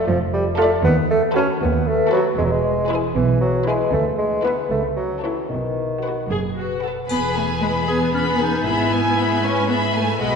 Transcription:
Already playing: F3 A3 D4 F4 F5
0.07 F1 F2 F3 D5
0.33 G3 A4
0.58 A3 F4 A4 D5
0.84 D#2 D#3 B3
1.10 A3 D#4
1.35 A3 C#4 F#4 A4 B4
1.61 D#2 B3 F#4
1.87 A3 B4
2.12 F#3 F#4 A4 B4
2.38 E1 E2 E3 G#3
2.45 F#3
2.52 G#3
2.90 E4 G#4 B4
3.15 B1 B2 E3 B4
3.41 F#3 G#4
3.67 G#3 E4 G#4 B4
3.92 D2 D3 A3
4.18 G#3 B3
4.44 B3 E4 B4
4.70 C#2 C#3 A3
4.96 F#3 C#4
5.22 E3 E4 A4 C#5
5.49 B1 B2 D#3
5.76 F#3
6.03 F#4 B4 F#5
6.29 F#1 F#2 F#3 G#4
6.56 F#4 B4
6.82 F#4 A4 B4 F#5
7.09 E1 E2 B3 G#4 B4 B5, triangle
7.35 B2 A3 G#4 B4 G#5
7.61 G#3 G#4 B4 B5
7.87 B3 G#4 B4 G#5
8.13 C#4 G#4 B4 B5
8.39 D#4 E4 G#4 B4 G#5
8.64 G#1 G#2 B3 E4 G#4 E5 B5
8.91 G#3 B4 G#5
9.18 G#4 E5 B5
9.43 C#4 B4 G#5
9.69 B3 G#4 E5 B5
9.95 A3 E4 B4 G#5
10.20 B1 B2 G#3 F#4 D#5 B5

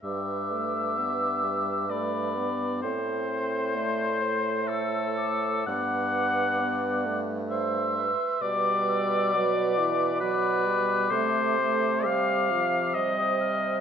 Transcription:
0.03 G2 G3 B4 E5 D6
0.51 A3
0.97 B3 B4
1.43 G3
1.89 A3 D5 B5
2.36 B3
2.82 A2 C4 A4 C5 C6
3.29 A4
3.75 A3 D5
4.22 C5
4.68 A4 E6
5.17 D6
5.66 G2 B3 B4 F#5 D6
6.59 B3 D5
7.05 A3
7.50 C5 E5 C6
7.96 B4
8.41 B2 G3 B4 D5 D6
8.89 E6
9.33 F#3 D6
9.78 E3
10.20 F#3 B4 D5 D6
10.65 G3
11.11 C3 A3 A4 C5
11.58 A3
12.05 G3 C5 F5
12.51 F3
12.94 G3 C5 D#5 D#6
13.41 F6

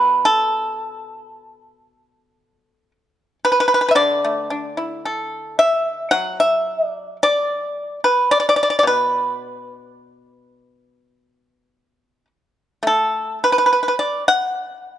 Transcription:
Already playing: B2 B4
0.25 A4
3.45 B4
3.52 B4
3.60 B4
3.68 B4
3.74 B4
3.81 B4
3.89 B4 E5
3.95 D3 D5
4.24 A3
4.50 D4
4.77 E4
5.05 A4
5.59 E5
6.11 F#3 F#5
6.40 E5
6.89 D5
7.23 D5
8.04 B4
8.31 D5
8.40 D5
8.49 D5
8.56 D5
8.63 D5
8.70 D5
8.79 D5
8.83 B2
8.87 B4
12.83 A3
12.87 A4
13.44 B4
13.52 B4
13.58 B4
13.66 B4
13.73 B4
13.83 B4
13.88 B4
13.99 D5
14.28 F#5

